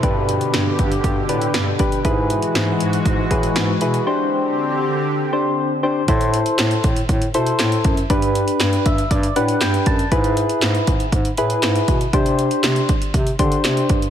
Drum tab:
HH |x-xxx-xxx-xxx-xx|x-xxx-xxx-xxx-xx|----------------|xxxxxxxxxxxxxxxx|
CP |----------------|----------------|----------------|----x-------x---|
SD |----o-------o---|----o-------o---|----------------|----o-------o---|
BD |o-----o-o-----o-|o-------o-o-----|----------------|o-----o-o-----o-|

HH |xxxxxxxxxxxxxxxx|xxxxxxxxxxxxxxxx|xxxxxxxxxxxxxxxx|
CP |----x-------x---|----x-------x---|----x-------x---|
SD |----o-------o---|----o-------o---|----o-------o---|
BD |o-----o-o-----o-|o-----o-o-----o-|o-----o-o-o---o-|